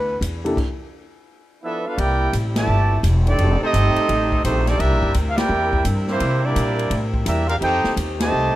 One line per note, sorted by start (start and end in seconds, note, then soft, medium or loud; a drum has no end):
0.00 0.20 D2 medium
0.00 0.54 E3 medium
0.00 0.53 A3 medium
0.00 0.54 B3 medium
0.00 0.53 D4 medium
0.00 0.18 B4 loud
0.21 0.55 E2 medium
0.21 kick soft
0.21 hi-hat pedal medium
0.21 ride medium
0.44 0.55 C3 medium
0.44 0.55 A#3 medium
0.44 0.56 D4 medium
0.44 0.56 E4 medium
0.44 0.56 G4 medium
0.44 0.56 A4 medium
0.44 ride medium
0.57 kick medium
0.57 crash medium
1.62 1.84 F3 medium
1.62 1.84 B3 medium
1.62 1.85 D4 medium
1.62 1.83 E4 medium
1.62 1.85 A4 medium
1.62 1.85 B4 medium
1.62 1.85 E5 medium
1.85 1.98 B3 medium
1.85 1.98 D4 medium
1.85 1.99 D4 medium
1.85 1.98 F4 medium
1.85 1.99 A4 medium
1.85 1.99 B4 medium
1.85 1.99 F5 medium
1.95 2.32 C2 medium
1.95 7.57 C3 medium
1.95 3.36 G3 medium
1.95 2.33 A#3 medium
1.95 8.56 C4 medium
1.95 3.36 E4 medium
1.95 2.33 E4 medium
1.95 2.34 E4 medium
1.95 2.33 G4 medium
1.95 2.33 A#4 medium
1.95 2.33 D5 medium
1.95 2.33 G5 loud
1.95 kick soft
1.95 ride medium
2.33 2.67 A1 medium
2.33 kick soft
2.33 hi-hat pedal medium
2.33 ride medium
2.54 2.99 A#2 medium
2.54 2.99 E3 medium
2.54 3.00 A3 medium
2.54 3.01 G4 medium
2.54 3.01 D5 medium
2.54 3.01 E5 medium
2.54 3.01 A5 loud
2.54 snare loud
2.54 ride medium
2.67 3.02 G1 medium
3.03 3.38 E1 loud
3.03 kick soft
3.03 hi-hat pedal medium
3.03 ride medium
3.26 3.59 D#3 medium
3.26 3.59 A3 medium
3.26 3.60 C4 medium
3.26 3.59 D4 medium
3.26 3.60 G4 medium
3.26 3.60 A4 medium
3.26 3.60 D5 medium
3.26 ride medium
3.38 3.60 F1 medium
3.38 4.78 G3 medium
3.38 4.78 D#4 medium
3.38 kick soft
3.38 ride medium
3.60 4.40 A3 medium
3.60 4.40 C4 medium
3.60 4.41 C4 medium
3.60 4.40 D#4 medium
3.60 4.41 G4 medium
3.60 4.41 A4 medium
3.60 4.41 D#5 loud
3.60 muted upright bass stroke soft
3.73 3.95 G1 loud
3.73 kick soft
3.73 hi-hat pedal medium
3.73 ride medium
3.95 muted upright bass stroke soft
3.95 ride medium
4.09 4.43 A1 medium
4.09 kick soft
4.09 ride medium
4.32 kick medium
4.43 4.79 A#1 loud
4.43 4.64 D#3 medium
4.43 4.64 A3 medium
4.43 4.66 A3 medium
4.43 4.65 C4 medium
4.43 4.66 D#4 medium
4.43 4.66 G4 medium
4.43 4.66 C5 medium
4.43 kick soft
4.43 hi-hat pedal medium
4.43 ride medium
4.65 4.79 D#3 medium
4.65 4.79 A3 medium
4.65 4.80 C4 medium
4.65 4.79 D4 medium
4.65 4.78 G4 medium
4.65 4.80 A4 medium
4.65 4.80 D5 medium
4.65 snare medium
4.65 ride medium
4.78 4.91 C2 medium
4.78 5.14 G3 medium
4.78 5.15 A#3 medium
4.78 5.15 D4 medium
4.78 5.14 E4 medium
4.78 7.59 E4 medium
4.78 5.15 G4 medium
4.78 7.58 A#4 medium
4.78 5.15 A#4 medium
4.78 5.15 E5 loud
4.78 kick soft
4.78 ride medium
4.91 5.02 A#1 medium
5.03 5.14 G1 medium
5.03 kick medium
5.14 5.49 D2 loud
5.14 kick soft
5.14 hi-hat pedal medium
5.14 ride medium
5.29 5.38 F5 medium
5.36 5.85 A#3 medium
5.36 5.85 E4 medium
5.36 5.84 G4 medium
5.36 5.86 A#4 medium
5.36 5.85 D5 medium
5.36 5.85 G5 loud
5.36 snare loud
5.36 ride medium
5.49 5.84 E2 medium
5.73 kick medium
5.85 6.19 G2 loud
5.85 kick soft
5.85 hi-hat pedal medium
5.85 ride medium
6.07 6.41 E3 medium
6.07 6.41 G3 medium
6.07 6.41 A#3 medium
6.07 6.41 C4 medium
6.07 6.42 E4 medium
6.07 6.41 G4 medium
6.07 6.42 C5 loud
6.07 snare soft
6.20 6.55 C3 medium
6.20 kick soft
6.20 ride medium
6.41 7.01 G3 medium
6.41 7.01 A#3 medium
6.41 7.02 A#3 medium
6.41 7.01 D4 medium
6.41 7.02 E4 medium
6.41 7.02 G4 medium
6.41 7.02 D5 loud
6.56 6.90 A#2 loud
6.56 kick soft
6.56 hi-hat pedal medium
6.56 ride medium
6.79 ride medium
6.90 7.25 A2 medium
6.90 kick soft
6.90 ride medium
7.14 kick medium
7.24 7.60 E2 medium
7.24 7.47 G3 medium
7.24 7.47 A#3 medium
7.24 7.48 D4 medium
7.24 7.46 E4 medium
7.24 7.48 G4 medium
7.24 7.48 A#4 medium
7.24 7.47 E5 medium
7.24 hi-hat pedal medium
7.24 ride medium
7.47 7.55 D4 medium
7.47 7.53 F4 medium
7.47 7.55 G4 medium
7.47 7.55 A#4 medium
7.47 7.55 F5 medium
7.47 ride medium
7.59 7.82 F2 medium
7.59 8.56 D#3 medium
7.59 7.93 C4 loud
7.59 7.93 D#4 medium
7.59 8.56 D#4 medium
7.59 7.95 D#4 medium
7.59 7.93 G4 medium
7.59 7.94 A4 medium
7.59 7.95 C5 medium
7.59 7.95 G5 loud
7.59 kick soft
7.59 ride medium
7.63 8.56 G4 medium
7.84 muted upright bass stroke soft
7.84 snare medium
7.97 8.31 D#2 loud
7.97 kick soft
7.97 hi-hat pedal medium
7.97 ride medium
8.18 8.56 C3 medium
8.18 8.56 D#3 medium
8.18 8.56 A3 medium
8.18 8.56 G4 medium
8.18 8.56 C5 medium
8.18 8.56 D#5 medium
8.18 8.56 A5 loud
8.18 snare loud
8.18 ride medium
8.32 8.53 C2 medium